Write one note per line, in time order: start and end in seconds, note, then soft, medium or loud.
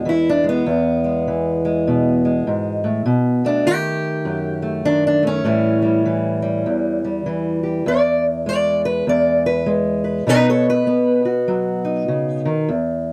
0.00 0.65 E2 medium
0.00 0.43 G#3 soft
0.00 0.27 D4 soft
0.05 0.63 E3 medium
0.05 0.28 E4 medium
0.29 0.48 D4 medium
0.44 0.64 G#3 soft
0.49 2.28 B3 medium
0.66 2.46 E2 medium
1.04 1.64 G#3 soft
1.27 3.04 E3 medium
1.65 2.24 G#3 soft
1.87 2.84 B2 medium
2.25 3.04 G#3 soft
2.47 2.84 G#2 medium
2.84 3.05 A2 medium
3.06 3.66 B2 medium
3.45 4.61 A3 soft
3.45 3.66 D4 medium
3.65 4.84 D#3 medium
3.65 4.87 G4 loud
4.25 5.43 F#2 medium
4.62 5.22 A3 soft
4.85 5.43 D#3 medium
4.85 5.06 D4 loud
5.07 5.27 D4 loud
5.23 5.43 A3 soft
5.27 7.07 C#4 loud
5.45 6.66 A2 medium
5.45 6.05 E3 medium
5.45 5.81 G3 medium
5.82 6.41 G3 soft
6.05 7.25 E3 medium
6.42 7.03 G3 soft
6.66 7.85 E2 medium
7.04 7.87 G3 soft
7.26 7.84 E3 medium
7.63 7.84 G4 soft
7.86 9.06 E2 medium
7.86 8.25 D5 loud
8.46 9.65 G#3 medium
8.46 8.85 D5 loud
8.85 9.08 B4 medium
9.07 10.26 E2 medium
9.07 9.45 D5 loud
9.46 9.69 B4 loud
9.66 10.24 G#3 medium
10.04 10.29 B4 soft
10.27 12.66 B2 medium
10.27 10.86 B3 medium
10.27 10.49 D#4 loud
10.27 10.49 B4 loud
10.50 10.69 A4 medium
10.50 10.69 C#5 medium
10.70 11.29 B4 loud
10.87 12.45 B3 medium
11.25 12.67 F#4 soft
11.48 12.08 F#3 medium
11.85 12.66 D#4 soft
12.08 12.46 C#3 medium
12.45 12.69 D#3 medium
12.69 13.13 E2 medium